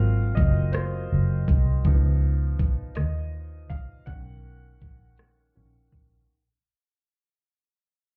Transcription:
0.00 0.33 G#1 medium
0.00 0.12 F#3 medium
0.00 0.12 A#3 soft
0.00 0.12 C4 soft
0.00 0.13 F4 medium
0.00 0.38 F5 loud
0.35 1.07 F#1 medium
0.35 0.74 D#5 medium
0.35 kick medium
0.35 closed hi-hat medium
0.72 1.52 C5 medium
0.72 cross-stick medium
0.72 closed hi-hat medium
1.12 1.45 F#1 medium
1.48 1.82 C2 medium
1.48 kick medium
1.48 closed hi-hat medium
1.85 2.55 C#2 medium
1.85 2.92 F3 soft
1.85 2.92 B3 soft
1.85 2.93 D#4 medium
1.85 kick medium
1.85 closed hi-hat medium
2.59 muted fingered electric bass stroke soft
2.59 kick medium
2.59 closed hi-hat medium
2.95 3.71 D#2 medium
2.95 3.72 D#5 medium
2.95 cross-stick medium
2.95 closed hi-hat medium
3.70 4.04 A#1 medium
3.70 4.08 F5 medium
3.70 kick medium
3.70 closed hi-hat soft
4.06 4.77 B1 medium
4.06 5.14 D#3 soft
4.06 5.14 A#3 soft
4.06 5.14 C#4 medium
4.06 5.51 F#5 medium
4.06 kick medium
4.06 closed hi-hat medium
4.82 5.52 A#1 medium
4.82 kick medium
4.82 closed hi-hat medium
5.18 cross-stick medium
5.18 closed hi-hat medium
5.55 5.89 A#1 medium
5.55 5.88 D#3 soft
5.55 5.89 A#3 soft
5.55 5.89 C#4 soft
5.92 6.26 A#1 medium
5.92 kick medium
5.92 closed hi-hat medium

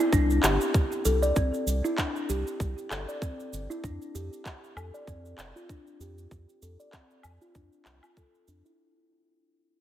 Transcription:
0.00 cabasa soft
0.13 0.39 C2 medium
0.13 0.42 D4 medium
0.13 kick loud
0.13 cabasa soft
0.30 cabasa soft
0.43 0.58 G1 medium
0.43 0.60 G4 medium
0.43 clap medium
0.43 cabasa medium
0.61 cabasa soft
0.74 kick medium
0.74 cabasa soft
0.92 cabasa soft
1.05 1.32 C2 medium
1.05 1.22 A4 medium
1.05 cabasa medium
1.22 1.35 D5 medium
1.22 cabasa soft
1.36 1.51 C2 loud
1.36 1.83 C4 medium
1.36 kick medium
1.36 cabasa soft
1.54 cabasa soft
1.66 1.81 C2 medium
1.66 cabasa medium
1.84 1.92 E4 medium
1.84 cabasa soft
1.98 2.28 D4 medium
1.98 kick medium
1.98 clap medium
1.98 cabasa soft
2.16 cabasa soft
2.29 2.44 C2 medium
2.29 2.46 G4 medium
2.29 cabasa medium
2.47 cabasa soft
2.60 2.75 C2 medium
2.60 kick loud
2.60 cabasa soft
2.78 cabasa soft
2.91 3.06 G1 medium
2.91 3.07 A4 medium
2.91 clap medium
2.91 cabasa medium
3.08 3.21 D5 medium
3.08 cabasa soft
3.22 3.68 C4 medium
3.22 kick medium
3.22 cabasa soft
3.40 cabasa soft
3.53 3.67 G1 loud
3.53 cabasa medium
3.70 3.78 E4 medium
3.70 cabasa soft
3.83 3.98 F2 loud
3.83 4.13 D4 medium
3.83 kick medium
3.83 cabasa soft
4.02 cabasa soft
4.15 4.29 F2 medium
4.15 4.31 G4 medium
4.15 cabasa medium
4.33 cabasa soft
4.46 kick medium
4.46 clap medium
4.46 cabasa soft
4.64 cabasa soft
4.76 4.91 F2 medium
4.76 4.93 A4 medium
4.76 cabasa medium
4.76 low woodblock medium
4.94 5.07 D5 medium
4.94 cabasa soft
5.07 5.34 F2 medium
5.07 5.54 C4 medium
5.07 kick medium
5.07 cabasa soft
5.25 cabasa soft
5.38 5.53 F1 medium
5.38 clap medium
5.38 cabasa medium
5.56 5.63 F4 medium
5.56 cabasa soft
5.69 5.99 D4 medium
5.69 kick medium
5.69 cabasa soft
5.87 cabasa soft
6.00 6.27 F2 medium
6.00 6.17 G4 medium
6.00 cabasa medium
6.18 cabasa soft
6.31 6.46 F2 medium
6.31 kick medium
6.31 cabasa soft
6.49 cabasa soft
6.62 6.77 F2 medium
6.62 6.79 A4 medium
6.62 cabasa medium
6.80 6.92 D5 medium
6.80 cabasa soft
6.93 7.40 C4 medium
6.93 kick medium
6.93 clap medium
6.93 cabasa soft
7.11 cabasa soft
7.23 7.39 F2 medium
7.23 cabasa medium
7.23 low woodblock medium
7.42 7.49 F4 medium
7.42 cabasa soft
7.55 7.70 F2 medium
7.55 7.71 D4 medium
7.55 kick medium
7.55 cabasa soft
7.73 cabasa soft
7.85 8.00 C2 medium
7.85 clap medium
7.85 cabasa medium
8.03 8.16 F4 medium
8.03 cabasa soft
8.03 low woodblock medium
8.17 8.33 A4 medium
8.17 kick medium
8.17 cabasa soft
8.35 cabasa soft
8.48 8.62 F2 medium
8.48 8.63 D4 medium
8.48 cabasa medium
8.65 8.77 E4 loud
8.65 cabasa soft

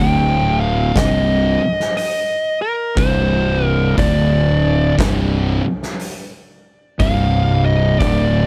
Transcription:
0.00 0.91 D1 medium
0.00 0.95 D2 medium
0.00 0.95 A2 medium
0.00 0.95 D3 medium
0.00 0.60 G5 loud
0.60 0.97 F5 medium
0.95 1.57 C1 medium
0.95 1.59 C2 medium
0.95 1.59 G2 medium
0.95 1.59 C3 loud
0.95 1.96 D#5 loud
0.95 kick loud
0.95 snare loud
0.95 open hi-hat medium
1.80 snare soft
1.97 2.58 D#5 medium
1.97 open hi-hat medium
2.62 2.98 A#4 medium
2.96 3.94 C1 medium
2.96 3.96 C2 medium
2.96 3.97 G2 loud
2.96 3.97 C3 loud
2.96 3.66 C5 medium
2.96 kick loud
2.96 open hi-hat medium
3.66 3.94 A#4 medium
3.97 4.94 D1 medium
3.97 4.97 D2 loud
3.97 4.97 A2 medium
3.97 4.98 D3 loud
3.97 4.95 D5 medium
3.97 kick loud
3.97 open hi-hat medium
4.98 5.59 C1 medium
4.98 5.62 C2 loud
4.98 5.62 G2 loud
4.98 5.62 C3 loud
4.98 kick loud
4.98 snare loud
4.98 open hi-hat medium
5.83 snare soft
6.00 open hi-hat medium
6.99 7.96 C1 medium
6.99 7.99 C2 loud
6.99 7.99 G2 loud
6.99 7.99 C3 loud
6.99 7.65 F5 medium
6.99 kick loud
6.99 open hi-hat medium
7.65 7.99 D#5 medium
7.99 8.47 D1 medium
7.99 8.47 D2 medium
7.99 8.47 A2 medium
7.99 8.47 D3 medium
7.99 8.47 D5 medium
7.99 kick loud
7.99 open hi-hat medium

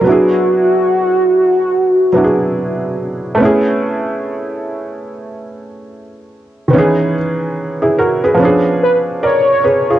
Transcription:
0.01 2.08 F#3 medium
0.01 2.09 B3 medium
0.06 2.11 D4 medium
0.06 2.12 E4 medium
0.06 2.98 F#4 loud
0.12 2.13 G#4 medium
2.13 3.38 F#3 soft
2.13 3.36 B3 soft
2.13 3.40 D4 soft
2.13 3.40 E4 soft
2.17 2.24 F#4 soft
2.24 3.44 G#4 medium
3.35 6.66 A3 medium
3.35 6.68 B3 medium
3.40 6.69 C#4 medium
3.40 6.70 E4 medium
3.45 6.71 G#4 medium
6.68 6.78 D#3 medium
6.68 8.35 B3 medium
6.73 8.37 E3 medium
6.73 8.36 C#4 medium
6.73 7.15 D#4 medium
6.79 7.16 G#4 medium
7.82 7.97 E4 soft
7.82 7.97 G#4 medium
7.98 8.22 F#4 soft
7.98 8.22 A#4 medium
8.24 8.43 G#4 soft
8.24 8.63 B4 medium
8.34 9.99 F3 medium
8.34 9.99 B3 medium
8.40 9.99 C#4 medium
8.40 9.99 D4 medium
8.45 9.24 G#4 medium
8.83 8.97 B4 loud
9.23 9.62 A#4 medium
9.23 9.99 C#5 loud
9.23 9.99 D5 medium
9.64 9.89 G#4 soft
9.64 9.88 B4 medium
9.90 9.99 F4 soft
9.90 9.99 G#4 medium

